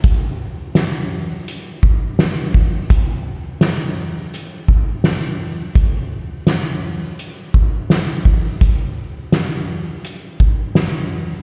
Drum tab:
HH |x-x-x-x-|x-x-x-x-|x-x-x-x-|x-x-x-x-|
SD |--o---o-|--o---o-|--o---o-|--o---o-|
BD |o----o-o|o----o--|o----o-o|o----o--|